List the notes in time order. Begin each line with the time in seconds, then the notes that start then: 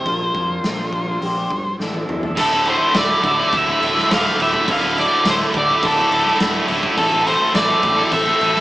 Already playing: C5
0.05 A#1 A#2 F3 A#3 D4 F4 A#4, kick, open hi-hat
0.35 F2 A#3 D4 F4 A#4, kick
0.63 A#1 A#2 F3 A#3 D4 F4 A#4, snare, open hi-hat
0.77 A#3 D4 F4 A#4
0.93 A#1 A#3 D4 F4 A#4, kick
1.07 A#3 D4 F4 A#4
1.21 A#1 G2 D3 G3 A#3 D4 G4, open hi-hat
1.35 G3 A#3 D4 G4
1.50 G2, muted clean electric guitar stroke, kick
1.79 A1 A2 E3 A3 D4 E4 A4, snare
1.94 A3 D4 E4 A4, high tom
2.08 E2 A3 D4 E4 A4, mid tom
2.23 A3 D4 E4 A4, floor tom
2.35 D1 D2 A2 D3 A3 E4 A4 E5, kick, crash
2.39 D6
2.51 D3 A3 E4
2.65 A2 D3 A3 E4 C5, crash
2.79 D3 A3 E4
2.93 D1 D2 A2 D3 A3 E4, snare, crash
2.98 D5
3.09 D3 A3 E4
3.22 D1 A2 D3 A3 E4, muted distorted electric guitar stroke, kick, crash
3.37 D3 A3 E4
3.51 D1 A2 D3 A3 E4, kick, crash
3.57 E5
3.66 D3 A3 E4
3.80 D1 A2 D3 A3 E4, crash
3.93 D3 A3 E4
3.98 snare
4.09 D1 D2 A2 D3 A3 E4, snare, crash
4.14 F5
4.24 D3 A3 E4
4.37 D1 A2 D3 A3 E4, crash
4.42 E5
4.51 D3 A3 E4, kick
4.65 D1 D2 A2 D3 A3 E4, kick, crash
4.70 D5 F5
4.83 D3 A3 E4
4.95 A2 D3 A3 E4, crash
5.00 D5
5.08 D3 A3 E4
5.24 D1 D2 A2 D3 A3 E4, snare, crash
5.30 C5
5.39 D3 A3 E4
5.53 D1 A2 D3 A3 E4, muted distorted electric guitar stroke, kick, crash
5.58 D5
5.68 D3 A3 E4
5.82 D1 A2 D3 A3 E4 A4, kick, crash
5.97 D3 A3 E4
6.10 D1 A2 D3 A3 E4, crash
6.24 D3 A3 E4, snare
6.38 D1 D2 A2 D3 A3 E4, snare, crash
6.55 D3 A3 E4
6.67 D1 A2 D3 A3 E4, crash
6.82 D3 A3 E4, kick
6.96 A1 A2 E3 A3 C4 E4 A4 E5 C6, kick, crash
7.12 A3 C4 E4 A4
7.24 A3 C4 E4 A4 C5, crash
7.39 A3 C4 E4 A4
7.54 A1 A2 E3 A3 C4 E4 A4 D5, snare, crash
7.69 A3 C4 E4 A4
7.82 A1 A3 C4 E4 A4, muted distorted electric guitar stroke, kick, crash
7.96 A3 C4 E4 A4
8.11 A1 A3 C4 E4 A4 E5, kick, crash
8.26 A3 C4 E4 A4
8.38 A1 A3 C4 E4 A4, crash
8.53 A3 C4 E4 A4, snare